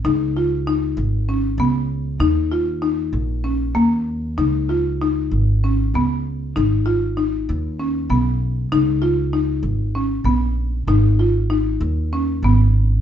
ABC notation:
X:1
M:7/8
L:1/8
Q:1/4=97
K:G#dor
V:1 name="Marimba"
D E D2 C B,2 | D E D2 C A,2 | D E D2 C B,2 | D E D2 C B,2 |
D E D2 C B,2 | D E D2 C B,2 |]
V:2 name="Upright bass" clef=bass
C,,3 G,,,2 C,,2 | D,,3 A,,,2 D,,2 | C,,3 G,,,2 C,,2 | G,,,3 D,,2 B,,,2 |
C,,3 G,,,2 A,,,2 | G,,,3 D,,2 G,,,2 |]